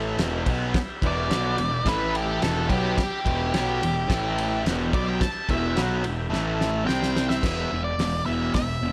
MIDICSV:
0, 0, Header, 1, 6, 480
1, 0, Start_track
1, 0, Key_signature, 1, "minor"
1, 0, Tempo, 557103
1, 646, Time_signature, 4, 2, 24, 8
1, 7690, End_track
2, 0, Start_track
2, 0, Title_t, "Lead electric guitar"
2, 0, Program_c, 0, 29
2, 919, Note_on_c, 0, 74, 103
2, 1604, Note_off_c, 0, 74, 0
2, 1625, Note_on_c, 0, 71, 99
2, 1850, Note_off_c, 0, 71, 0
2, 1862, Note_on_c, 0, 67, 92
2, 2089, Note_off_c, 0, 67, 0
2, 2091, Note_on_c, 0, 69, 91
2, 2317, Note_on_c, 0, 67, 98
2, 2323, Note_off_c, 0, 69, 0
2, 2554, Note_off_c, 0, 67, 0
2, 2564, Note_on_c, 0, 67, 98
2, 3971, Note_off_c, 0, 67, 0
2, 4259, Note_on_c, 0, 74, 104
2, 4369, Note_off_c, 0, 74, 0
2, 4379, Note_on_c, 0, 79, 100
2, 4490, Note_off_c, 0, 79, 0
2, 4494, Note_on_c, 0, 81, 98
2, 4723, Note_off_c, 0, 81, 0
2, 4744, Note_on_c, 0, 76, 108
2, 4968, Note_off_c, 0, 76, 0
2, 5918, Note_on_c, 0, 79, 110
2, 6256, Note_off_c, 0, 79, 0
2, 6283, Note_on_c, 0, 76, 123
2, 6754, Note_off_c, 0, 76, 0
2, 6757, Note_on_c, 0, 74, 97
2, 7113, Note_off_c, 0, 74, 0
2, 7117, Note_on_c, 0, 76, 84
2, 7353, Note_off_c, 0, 76, 0
2, 7363, Note_on_c, 0, 76, 88
2, 7690, Note_off_c, 0, 76, 0
2, 7690, End_track
3, 0, Start_track
3, 0, Title_t, "Transistor combo organ"
3, 0, Program_c, 1, 18
3, 0, Note_on_c, 1, 64, 87
3, 0, Note_on_c, 1, 69, 80
3, 0, Note_on_c, 1, 76, 86
3, 155, Note_on_c, 1, 67, 84
3, 165, Note_off_c, 1, 76, 0
3, 167, Note_off_c, 1, 64, 0
3, 168, Note_off_c, 1, 69, 0
3, 169, Note_on_c, 1, 71, 66
3, 175, Note_on_c, 1, 76, 87
3, 1575, Note_off_c, 1, 67, 0
3, 1582, Note_off_c, 1, 71, 0
3, 1586, Note_off_c, 1, 76, 0
3, 1599, Note_on_c, 1, 69, 58
3, 1600, Note_on_c, 1, 64, 73
3, 1601, Note_on_c, 1, 76, 73
3, 2059, Note_on_c, 1, 67, 66
3, 2081, Note_on_c, 1, 71, 67
3, 2082, Note_off_c, 1, 76, 0
3, 2084, Note_off_c, 1, 69, 0
3, 2085, Note_off_c, 1, 64, 0
3, 2092, Note_on_c, 1, 76, 73
3, 3485, Note_off_c, 1, 67, 0
3, 3496, Note_off_c, 1, 71, 0
3, 3501, Note_off_c, 1, 76, 0
3, 3507, Note_on_c, 1, 64, 77
3, 3520, Note_on_c, 1, 69, 67
3, 3525, Note_on_c, 1, 76, 85
3, 3979, Note_on_c, 1, 67, 82
3, 3989, Note_on_c, 1, 71, 73
3, 3991, Note_off_c, 1, 76, 0
3, 3997, Note_off_c, 1, 64, 0
3, 4002, Note_on_c, 1, 76, 93
3, 4003, Note_off_c, 1, 69, 0
3, 5402, Note_off_c, 1, 67, 0
3, 5407, Note_off_c, 1, 71, 0
3, 5414, Note_off_c, 1, 76, 0
3, 5431, Note_on_c, 1, 64, 87
3, 5441, Note_on_c, 1, 69, 75
3, 5443, Note_on_c, 1, 76, 84
3, 5918, Note_off_c, 1, 64, 0
3, 5923, Note_off_c, 1, 69, 0
3, 5924, Note_off_c, 1, 76, 0
3, 5928, Note_on_c, 1, 67, 85
3, 5930, Note_on_c, 1, 72, 75
3, 5941, Note_on_c, 1, 79, 98
3, 6406, Note_off_c, 1, 67, 0
3, 6407, Note_off_c, 1, 72, 0
3, 6413, Note_off_c, 1, 79, 0
3, 7690, End_track
4, 0, Start_track
4, 0, Title_t, "Distorted electric guitar"
4, 0, Program_c, 2, 30
4, 0, Note_on_c, 2, 45, 111
4, 0, Note_on_c, 2, 52, 116
4, 0, Note_on_c, 2, 57, 107
4, 161, Note_off_c, 2, 45, 0
4, 164, Note_off_c, 2, 52, 0
4, 165, Note_off_c, 2, 57, 0
4, 180, Note_on_c, 2, 40, 88
4, 186, Note_on_c, 2, 47, 105
4, 196, Note_on_c, 2, 52, 97
4, 399, Note_off_c, 2, 47, 0
4, 405, Note_off_c, 2, 52, 0
4, 406, Note_off_c, 2, 40, 0
4, 408, Note_on_c, 2, 54, 98
4, 410, Note_on_c, 2, 47, 103
4, 420, Note_on_c, 2, 59, 101
4, 640, Note_off_c, 2, 54, 0
4, 641, Note_off_c, 2, 47, 0
4, 646, Note_off_c, 2, 59, 0
4, 879, Note_on_c, 2, 40, 100
4, 892, Note_on_c, 2, 47, 102
4, 901, Note_on_c, 2, 52, 97
4, 1102, Note_off_c, 2, 47, 0
4, 1113, Note_on_c, 2, 47, 98
4, 1116, Note_off_c, 2, 40, 0
4, 1126, Note_off_c, 2, 52, 0
4, 1129, Note_on_c, 2, 54, 108
4, 1129, Note_on_c, 2, 59, 100
4, 1342, Note_off_c, 2, 47, 0
4, 1349, Note_on_c, 2, 40, 69
4, 1352, Note_on_c, 2, 47, 77
4, 1361, Note_off_c, 2, 59, 0
4, 1362, Note_off_c, 2, 54, 0
4, 1551, Note_off_c, 2, 40, 0
4, 1552, Note_off_c, 2, 47, 0
4, 1596, Note_on_c, 2, 45, 99
4, 1599, Note_on_c, 2, 52, 105
4, 1610, Note_on_c, 2, 57, 100
4, 2076, Note_off_c, 2, 45, 0
4, 2077, Note_off_c, 2, 52, 0
4, 2077, Note_on_c, 2, 40, 102
4, 2083, Note_off_c, 2, 57, 0
4, 2085, Note_on_c, 2, 47, 111
4, 2091, Note_on_c, 2, 52, 93
4, 2304, Note_off_c, 2, 47, 0
4, 2314, Note_on_c, 2, 47, 89
4, 2316, Note_off_c, 2, 40, 0
4, 2320, Note_off_c, 2, 52, 0
4, 2323, Note_on_c, 2, 54, 102
4, 2334, Note_on_c, 2, 59, 116
4, 2555, Note_off_c, 2, 47, 0
4, 2559, Note_off_c, 2, 54, 0
4, 2564, Note_off_c, 2, 59, 0
4, 2796, Note_on_c, 2, 47, 97
4, 2800, Note_on_c, 2, 40, 90
4, 2807, Note_on_c, 2, 52, 98
4, 3035, Note_off_c, 2, 47, 0
4, 3037, Note_off_c, 2, 40, 0
4, 3041, Note_off_c, 2, 52, 0
4, 3050, Note_on_c, 2, 47, 97
4, 3050, Note_on_c, 2, 54, 99
4, 3050, Note_on_c, 2, 59, 99
4, 3276, Note_off_c, 2, 47, 0
4, 3282, Note_off_c, 2, 54, 0
4, 3282, Note_off_c, 2, 59, 0
4, 3287, Note_on_c, 2, 47, 69
4, 3292, Note_on_c, 2, 40, 70
4, 3479, Note_off_c, 2, 47, 0
4, 3482, Note_off_c, 2, 40, 0
4, 3517, Note_on_c, 2, 45, 97
4, 3524, Note_on_c, 2, 52, 99
4, 3534, Note_on_c, 2, 57, 107
4, 3995, Note_off_c, 2, 45, 0
4, 3998, Note_off_c, 2, 52, 0
4, 4003, Note_off_c, 2, 57, 0
4, 4024, Note_on_c, 2, 40, 94
4, 4032, Note_on_c, 2, 47, 110
4, 4034, Note_on_c, 2, 52, 97
4, 4249, Note_off_c, 2, 40, 0
4, 4249, Note_off_c, 2, 47, 0
4, 4253, Note_off_c, 2, 52, 0
4, 4260, Note_on_c, 2, 47, 99
4, 4264, Note_on_c, 2, 54, 102
4, 4272, Note_on_c, 2, 59, 109
4, 4486, Note_off_c, 2, 47, 0
4, 4488, Note_off_c, 2, 54, 0
4, 4492, Note_off_c, 2, 59, 0
4, 4733, Note_on_c, 2, 40, 99
4, 4740, Note_on_c, 2, 47, 99
4, 4746, Note_on_c, 2, 52, 107
4, 4941, Note_off_c, 2, 47, 0
4, 4952, Note_on_c, 2, 47, 85
4, 4962, Note_off_c, 2, 40, 0
4, 4962, Note_off_c, 2, 52, 0
4, 4966, Note_on_c, 2, 54, 107
4, 4972, Note_on_c, 2, 59, 99
4, 5185, Note_off_c, 2, 47, 0
4, 5195, Note_on_c, 2, 47, 72
4, 5198, Note_off_c, 2, 54, 0
4, 5202, Note_off_c, 2, 59, 0
4, 5203, Note_on_c, 2, 40, 62
4, 5392, Note_off_c, 2, 47, 0
4, 5396, Note_off_c, 2, 40, 0
4, 5426, Note_on_c, 2, 52, 100
4, 5428, Note_on_c, 2, 45, 107
4, 5430, Note_on_c, 2, 57, 122
4, 5892, Note_off_c, 2, 45, 0
4, 5895, Note_on_c, 2, 48, 91
4, 5900, Note_off_c, 2, 52, 0
4, 5903, Note_on_c, 2, 55, 92
4, 5906, Note_off_c, 2, 57, 0
4, 5909, Note_on_c, 2, 60, 112
4, 6383, Note_off_c, 2, 48, 0
4, 6387, Note_off_c, 2, 55, 0
4, 6390, Note_off_c, 2, 60, 0
4, 6397, Note_on_c, 2, 47, 78
4, 6402, Note_on_c, 2, 40, 76
4, 6406, Note_on_c, 2, 52, 93
4, 6626, Note_off_c, 2, 47, 0
4, 6629, Note_off_c, 2, 40, 0
4, 6631, Note_off_c, 2, 52, 0
4, 6644, Note_on_c, 2, 40, 78
4, 6646, Note_on_c, 2, 47, 77
4, 6860, Note_off_c, 2, 40, 0
4, 6861, Note_off_c, 2, 47, 0
4, 6888, Note_on_c, 2, 40, 88
4, 6895, Note_on_c, 2, 47, 85
4, 7103, Note_off_c, 2, 40, 0
4, 7106, Note_off_c, 2, 47, 0
4, 7119, Note_on_c, 2, 40, 94
4, 7123, Note_on_c, 2, 47, 91
4, 7126, Note_on_c, 2, 52, 106
4, 7348, Note_off_c, 2, 40, 0
4, 7350, Note_off_c, 2, 47, 0
4, 7351, Note_off_c, 2, 52, 0
4, 7375, Note_on_c, 2, 40, 77
4, 7376, Note_on_c, 2, 47, 85
4, 7587, Note_off_c, 2, 40, 0
4, 7587, Note_off_c, 2, 47, 0
4, 7605, Note_on_c, 2, 47, 86
4, 7608, Note_on_c, 2, 40, 75
4, 7690, Note_off_c, 2, 40, 0
4, 7690, Note_off_c, 2, 47, 0
4, 7690, End_track
5, 0, Start_track
5, 0, Title_t, "Picked electric bass"
5, 0, Program_c, 3, 34
5, 0, Note_on_c, 3, 33, 92
5, 125, Note_off_c, 3, 33, 0
5, 150, Note_on_c, 3, 28, 93
5, 380, Note_off_c, 3, 28, 0
5, 399, Note_on_c, 3, 35, 105
5, 626, Note_off_c, 3, 35, 0
5, 880, Note_on_c, 3, 28, 110
5, 1107, Note_off_c, 3, 28, 0
5, 1120, Note_on_c, 3, 35, 100
5, 1347, Note_off_c, 3, 35, 0
5, 1364, Note_on_c, 3, 28, 78
5, 1590, Note_off_c, 3, 28, 0
5, 1603, Note_on_c, 3, 33, 101
5, 2052, Note_off_c, 3, 33, 0
5, 2082, Note_on_c, 3, 28, 91
5, 2309, Note_off_c, 3, 28, 0
5, 2330, Note_on_c, 3, 35, 101
5, 2553, Note_off_c, 3, 35, 0
5, 2801, Note_on_c, 3, 28, 104
5, 3028, Note_off_c, 3, 28, 0
5, 3049, Note_on_c, 3, 35, 108
5, 3272, Note_off_c, 3, 35, 0
5, 3296, Note_on_c, 3, 28, 80
5, 3516, Note_off_c, 3, 28, 0
5, 3530, Note_on_c, 3, 33, 85
5, 3975, Note_off_c, 3, 33, 0
5, 3998, Note_on_c, 3, 28, 104
5, 4225, Note_off_c, 3, 28, 0
5, 4249, Note_on_c, 3, 35, 106
5, 4471, Note_off_c, 3, 35, 0
5, 4729, Note_on_c, 3, 28, 108
5, 4951, Note_off_c, 3, 28, 0
5, 4982, Note_on_c, 3, 35, 113
5, 5198, Note_off_c, 3, 35, 0
5, 5233, Note_on_c, 3, 28, 81
5, 5443, Note_off_c, 3, 28, 0
5, 5464, Note_on_c, 3, 33, 100
5, 5901, Note_off_c, 3, 33, 0
5, 5935, Note_on_c, 3, 36, 100
5, 6376, Note_off_c, 3, 36, 0
5, 6403, Note_on_c, 3, 28, 81
5, 6584, Note_off_c, 3, 28, 0
5, 6656, Note_on_c, 3, 28, 89
5, 6832, Note_off_c, 3, 28, 0
5, 6884, Note_on_c, 3, 28, 100
5, 7064, Note_off_c, 3, 28, 0
5, 7135, Note_on_c, 3, 28, 78
5, 7311, Note_off_c, 3, 28, 0
5, 7370, Note_on_c, 3, 28, 84
5, 7548, Note_off_c, 3, 28, 0
5, 7603, Note_on_c, 3, 28, 90
5, 7690, Note_off_c, 3, 28, 0
5, 7690, End_track
6, 0, Start_track
6, 0, Title_t, "Drums"
6, 160, Note_on_c, 9, 51, 99
6, 167, Note_on_c, 9, 38, 125
6, 246, Note_off_c, 9, 51, 0
6, 253, Note_off_c, 9, 38, 0
6, 399, Note_on_c, 9, 36, 114
6, 399, Note_on_c, 9, 51, 83
6, 485, Note_off_c, 9, 36, 0
6, 486, Note_off_c, 9, 51, 0
6, 639, Note_on_c, 9, 51, 99
6, 641, Note_on_c, 9, 36, 127
6, 646, Note_on_c, 9, 38, 127
6, 726, Note_off_c, 9, 51, 0
6, 727, Note_off_c, 9, 36, 0
6, 732, Note_off_c, 9, 38, 0
6, 881, Note_on_c, 9, 36, 107
6, 888, Note_on_c, 9, 51, 72
6, 967, Note_off_c, 9, 36, 0
6, 974, Note_off_c, 9, 51, 0
6, 1126, Note_on_c, 9, 51, 94
6, 1133, Note_on_c, 9, 38, 117
6, 1212, Note_off_c, 9, 51, 0
6, 1219, Note_off_c, 9, 38, 0
6, 1362, Note_on_c, 9, 51, 75
6, 1449, Note_off_c, 9, 51, 0
6, 1601, Note_on_c, 9, 36, 108
6, 1605, Note_on_c, 9, 51, 104
6, 1612, Note_on_c, 9, 38, 114
6, 1687, Note_off_c, 9, 36, 0
6, 1691, Note_off_c, 9, 51, 0
6, 1698, Note_off_c, 9, 38, 0
6, 1852, Note_on_c, 9, 51, 73
6, 1938, Note_off_c, 9, 51, 0
6, 2086, Note_on_c, 9, 51, 102
6, 2093, Note_on_c, 9, 38, 118
6, 2172, Note_off_c, 9, 51, 0
6, 2179, Note_off_c, 9, 38, 0
6, 2322, Note_on_c, 9, 36, 104
6, 2324, Note_on_c, 9, 51, 74
6, 2409, Note_off_c, 9, 36, 0
6, 2411, Note_off_c, 9, 51, 0
6, 2565, Note_on_c, 9, 36, 117
6, 2567, Note_on_c, 9, 51, 116
6, 2574, Note_on_c, 9, 38, 127
6, 2651, Note_off_c, 9, 36, 0
6, 2654, Note_off_c, 9, 51, 0
6, 2660, Note_off_c, 9, 38, 0
6, 2807, Note_on_c, 9, 36, 102
6, 2812, Note_on_c, 9, 51, 75
6, 2893, Note_off_c, 9, 36, 0
6, 2898, Note_off_c, 9, 51, 0
6, 3049, Note_on_c, 9, 51, 111
6, 3056, Note_on_c, 9, 38, 119
6, 3135, Note_off_c, 9, 51, 0
6, 3142, Note_off_c, 9, 38, 0
6, 3300, Note_on_c, 9, 51, 79
6, 3386, Note_off_c, 9, 51, 0
6, 3530, Note_on_c, 9, 36, 114
6, 3532, Note_on_c, 9, 51, 114
6, 3539, Note_on_c, 9, 38, 122
6, 3617, Note_off_c, 9, 36, 0
6, 3619, Note_off_c, 9, 51, 0
6, 3625, Note_off_c, 9, 38, 0
6, 3777, Note_on_c, 9, 51, 89
6, 3863, Note_off_c, 9, 51, 0
6, 4017, Note_on_c, 9, 51, 106
6, 4024, Note_on_c, 9, 38, 113
6, 4103, Note_off_c, 9, 51, 0
6, 4110, Note_off_c, 9, 38, 0
6, 4251, Note_on_c, 9, 36, 121
6, 4256, Note_on_c, 9, 51, 74
6, 4337, Note_off_c, 9, 36, 0
6, 4342, Note_off_c, 9, 51, 0
6, 4489, Note_on_c, 9, 36, 125
6, 4490, Note_on_c, 9, 51, 106
6, 4497, Note_on_c, 9, 38, 119
6, 4575, Note_off_c, 9, 36, 0
6, 4576, Note_off_c, 9, 51, 0
6, 4583, Note_off_c, 9, 38, 0
6, 4728, Note_on_c, 9, 36, 97
6, 4732, Note_on_c, 9, 51, 80
6, 4814, Note_off_c, 9, 36, 0
6, 4818, Note_off_c, 9, 51, 0
6, 4969, Note_on_c, 9, 51, 98
6, 4976, Note_on_c, 9, 38, 116
6, 5055, Note_off_c, 9, 51, 0
6, 5062, Note_off_c, 9, 38, 0
6, 5204, Note_on_c, 9, 51, 77
6, 5291, Note_off_c, 9, 51, 0
6, 5457, Note_on_c, 9, 38, 70
6, 5543, Note_off_c, 9, 38, 0
6, 5696, Note_on_c, 9, 38, 77
6, 5782, Note_off_c, 9, 38, 0
6, 5934, Note_on_c, 9, 38, 94
6, 6020, Note_off_c, 9, 38, 0
6, 6054, Note_on_c, 9, 38, 87
6, 6140, Note_off_c, 9, 38, 0
6, 6173, Note_on_c, 9, 38, 101
6, 6259, Note_off_c, 9, 38, 0
6, 6292, Note_on_c, 9, 38, 103
6, 6378, Note_off_c, 9, 38, 0
6, 6403, Note_on_c, 9, 36, 124
6, 6404, Note_on_c, 9, 49, 127
6, 6411, Note_on_c, 9, 38, 127
6, 6489, Note_off_c, 9, 36, 0
6, 6490, Note_off_c, 9, 49, 0
6, 6497, Note_off_c, 9, 38, 0
6, 6885, Note_on_c, 9, 46, 52
6, 6892, Note_on_c, 9, 38, 104
6, 6971, Note_off_c, 9, 46, 0
6, 6978, Note_off_c, 9, 38, 0
6, 7357, Note_on_c, 9, 46, 56
6, 7362, Note_on_c, 9, 36, 108
6, 7364, Note_on_c, 9, 38, 111
6, 7443, Note_off_c, 9, 46, 0
6, 7448, Note_off_c, 9, 36, 0
6, 7450, Note_off_c, 9, 38, 0
6, 7690, End_track
0, 0, End_of_file